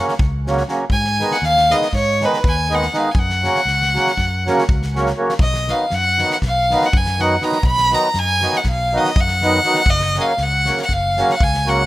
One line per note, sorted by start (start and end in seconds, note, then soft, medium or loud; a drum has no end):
0.00 0.13 C#3 medium
0.00 0.14 F#3 medium
0.00 0.14 A#3 medium
0.00 0.14 C#4 medium
0.08 snare soft
0.19 0.61 C#2 medium
0.19 kick loud
0.46 0.62 C#3 medium
0.46 0.63 F#3 medium
0.46 0.63 A#3 medium
0.46 0.63 C#4 medium
0.46 snare soft
0.57 snare soft
0.68 0.84 C#3 medium
0.68 0.84 F#3 medium
0.68 0.85 A#3 medium
0.68 0.85 C#4 medium
0.68 snare soft
0.90 1.22 G#2 loud
0.90 1.34 G#5 loud
0.90 kick medium
1.04 snare soft
1.20 1.36 D#3 medium
1.20 1.36 G#3 medium
1.20 1.36 B3 medium
1.20 1.37 D#4 medium
1.20 snare soft
1.31 1.36 F#5 medium
1.31 1.39 G#5 medium
1.31 snare soft
1.37 1.46 F#5 medium
1.42 1.73 D#2 medium
1.42 1.73 F5 loud
1.42 snare soft
1.57 snare soft
1.70 1.87 D#3 soft
1.70 1.87 G#3 soft
1.70 1.87 B3 medium
1.70 1.88 D#4 medium
1.70 1.94 D#5 medium
1.70 snare soft
1.81 snare soft
1.93 2.24 G#2 medium
1.93 2.26 C#5 loud
1.93 kick medium
1.93 snare soft
2.21 2.38 D#3 medium
2.21 2.39 G#3 medium
2.21 2.39 B3 medium
2.21 2.39 D#4 medium
2.21 2.49 B4 medium
2.21 snare soft
2.33 snare soft
2.44 2.87 D#2 medium
2.44 2.75 G#5 medium
2.44 kick medium
2.70 2.86 D#3 medium
2.70 2.86 G#3 medium
2.70 2.87 B3 medium
2.70 2.87 D#4 medium
2.70 snare soft
2.74 2.98 F#5 medium
2.82 snare soft
2.93 3.09 D#3 medium
2.93 3.10 G#3 medium
2.93 3.10 B3 medium
2.93 3.10 D#4 medium
2.93 3.13 F5 medium
2.93 snare soft
3.11 3.20 G#5 medium
3.11 kick medium
3.16 3.47 F#2 medium
3.16 4.97 F#5 medium
3.30 snare soft
3.43 3.60 C#3 medium
3.43 3.60 F#3 medium
3.43 3.60 A#3 soft
3.43 3.61 C#4 medium
3.43 snare soft
3.55 snare soft
3.65 3.97 C#2 medium
3.65 snare soft
3.82 snare soft
3.94 4.11 C#3 medium
3.94 4.11 F#3 medium
3.94 4.12 A#3 soft
3.94 4.12 C#4 medium
3.94 snare soft
4.07 snare soft
4.17 4.48 F#2 medium
4.17 kick medium
4.17 snare soft
4.46 4.63 C#3 medium
4.46 4.63 F#3 medium
4.46 4.64 A#3 medium
4.46 4.64 C#4 medium
4.46 snare soft
4.58 snare soft
4.69 5.11 C#2 medium
4.69 kick loud
4.82 snare soft
4.95 5.11 C#3 medium
4.95 5.12 F#3 medium
4.95 5.12 A#3 medium
4.95 5.12 C#4 medium
4.95 snare soft
5.06 snare soft
5.17 5.33 C#3 medium
5.17 5.33 F#3 medium
5.17 5.34 A#3 medium
5.17 5.34 C#4 medium
5.29 snare soft
5.39 5.71 B1 medium
5.39 5.72 D#5 medium
5.39 kick loud
5.54 snare soft
5.68 5.85 D#3 soft
5.68 5.85 F#3 soft
5.68 5.85 B3 medium
5.68 5.86 D#4 medium
5.68 5.96 F5 medium
5.68 snare soft
5.90 6.22 F#2 medium
5.90 6.32 F#5 loud
5.90 snare soft
6.18 6.35 D#3 medium
6.18 6.36 F#3 soft
6.18 6.36 B3 soft
6.18 6.36 D#4 medium
6.18 snare soft
6.30 6.37 F#5 medium
6.30 snare soft
6.42 6.74 B1 loud
6.42 6.87 F5 loud
6.42 kick medium
6.42 snare soft
6.71 6.87 D#3 medium
6.71 6.87 F#3 medium
6.71 6.88 B3 medium
6.71 6.88 D#4 medium
6.71 snare soft
6.82 6.98 F#5 medium
6.82 snare soft
6.93 7.36 F#2 medium
6.93 7.22 G#5 medium
6.93 kick loud
7.06 snare soft
7.19 7.35 D#3 medium
7.19 7.35 F#3 medium
7.19 7.36 B3 medium
7.19 7.36 D#4 medium
7.19 7.45 F#5 medium
7.19 snare soft
7.42 7.57 D#3 medium
7.42 7.58 F#3 medium
7.42 7.58 B3 medium
7.42 7.58 D#4 medium
7.42 7.64 A#5 medium
7.42 snare soft
7.52 snare soft
7.63 7.94 B1 medium
7.63 7.96 B5 loud
7.63 kick medium
7.78 snare soft
7.91 8.08 D#3 medium
7.91 8.08 F#3 medium
7.91 8.09 B3 medium
7.91 8.09 D#4 medium
7.91 8.20 A#5 medium
7.91 snare soft
8.14 8.45 F#2 medium
8.14 snare soft
8.18 8.58 G#5 loud
8.42 8.59 D#3 soft
8.42 8.59 F#3 medium
8.42 8.60 B3 soft
8.42 8.60 D#4 medium
8.42 snare soft
8.53 8.67 F#5 medium
8.53 snare soft
8.64 8.96 B1 medium
8.64 kick medium
8.64 snare soft
8.69 8.99 F5 medium
8.93 9.10 D#3 medium
8.93 9.10 F#3 medium
8.93 9.10 B3 medium
8.93 9.11 D#4 medium
8.98 9.21 D#5 medium
9.04 snare soft
9.16 9.58 F#2 medium
9.16 9.91 F#5 loud
9.16 kick medium
9.28 snare soft
9.41 9.59 D#3 medium
9.41 9.59 F#3 medium
9.41 9.59 B3 medium
9.41 9.60 D#4 medium
9.41 snare soft
9.64 9.81 D#3 medium
9.64 9.81 F#3 medium
9.64 9.82 B3 medium
9.64 9.82 D#4 medium
9.64 snare soft
9.74 snare soft
9.86 10.17 F#1 medium
9.86 10.22 D#5 loud
9.86 kick medium
10.00 snare soft
10.14 10.32 C#3 medium
10.14 10.32 F#3 medium
10.14 10.33 A#3 medium
10.14 10.33 C#4 medium
10.14 snare soft
10.21 10.44 F5 medium
10.37 10.69 C#2 medium
10.37 snare soft
10.43 10.80 F#5 loud
10.65 10.82 C#3 medium
10.65 10.83 F#3 medium
10.65 10.83 A#3 medium
10.65 10.83 C#4 medium
10.65 snare soft
10.77 snare soft
10.83 10.94 F#5 medium
10.88 11.20 F#1 medium
10.88 kick medium
10.88 snare soft
10.93 11.33 F5 medium
11.17 11.34 C#3 medium
11.17 11.34 F#3 medium
11.17 11.35 A#3 medium
11.17 11.35 C#4 medium
11.17 snare soft
11.29 11.36 F#5 medium
11.29 snare soft
11.35 11.39 F5 medium
11.35 11.44 F#5 medium
11.41 11.83 C#2 medium
11.41 11.70 G#5 medium
11.41 kick loud
11.54 snare soft
11.66 11.82 C#3 medium
11.66 11.82 F#3 medium
11.66 11.83 A#3 medium
11.66 11.83 C#4 medium
11.66 11.86 F#5 medium
11.66 snare soft